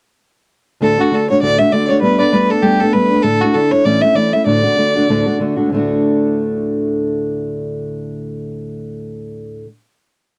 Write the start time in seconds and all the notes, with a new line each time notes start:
0.81 D2 A2 D3 A3 D4 F#4 A4
0.98 D3 A3 D4 F#4
1.11 D3 A3 D4 F#4 A4
1.30 D3 A3 D4 F#4 C#5
1.42 D2 A2 D3 A3 D4 F#4 D5
1.58 D3 A3 D4 F#4 E5
1.72 D3 A3 D4 F#4 D5
1.85 C#5 D5
1.89 D3 A3 D4 F#4
2.02 G3 A3 B3 D4 B4
2.19 A3 B3 D4 D5
2.33 G3 A3 B3 D4 B4
2.50 A3 B3 D4 A4
2.62 G3 A3 B3 D4 G4
2.80 A3 B3 D4 A4
2.93 G3 A3 B3 D4 B4
3.11 A3 B3 D4
3.23 A2 D3 A3 D4 E4 A4
3.41 D4 E4 F#4
3.46 A3
3.54 D3 A3 D4 E4 A4
3.71 A3 D4 E4 C#5
3.85 A2 E3 A3 C#4 E4 D5
4.01 A3 C#4 E4 E5
4.15 E3 A3 C#4 E4 D5
4.33 A3 C#4 E4 E5
4.46 D2 A2 D3 A3 D4 F#4 D5
4.63 D3 A3 D4 F#4
4.77 D3 A3 D4 F#4
4.95 D3 A3 D4 F#4
5.09 D2 A2 D3 A3 D4 F#4
5.26 D3 A3 D4 F#4
5.40 D3 A3 D4 F#4
5.56 D3 A3 D4 F#4
5.66 D2 A2
5.72 D3 A3
5.76 D4 F#4